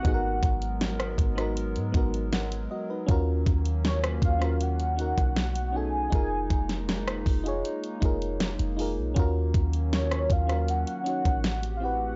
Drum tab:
HH |x-xxxxxxxxxxxx--|x-xxxxxxxxxxxx--|x-xxxxoxxxxxxxo-|x-xxxxxxxxxxxx--|
SD |----or-r----o---|----or-r----o---|---oor------o---|----or-r----o---|
BD |o-o---o---o-----|o-o---o----o----|o-o---o---o-----|o-o---o----o----|